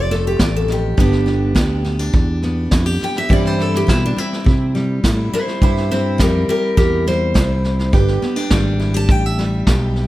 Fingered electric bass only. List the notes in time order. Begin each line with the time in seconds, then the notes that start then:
Already playing: F1
0.40 A1
0.98 G1
1.55 D2
2.14 E2
2.72 F2
3.02 muted fingered electric bass stroke
3.30 G2
3.88 B2
4.17 muted fingered electric bass stroke
4.46 C3
5.04 A2
5.33 muted fingered electric bass stroke
5.62 G2
6.19 F2
6.48 muted fingered electric bass stroke
6.77 E2
7.35 C2
7.93 G1
8.23 muted fingered electric bass stroke
8.51 G#1
9.09 A1
9.67 B1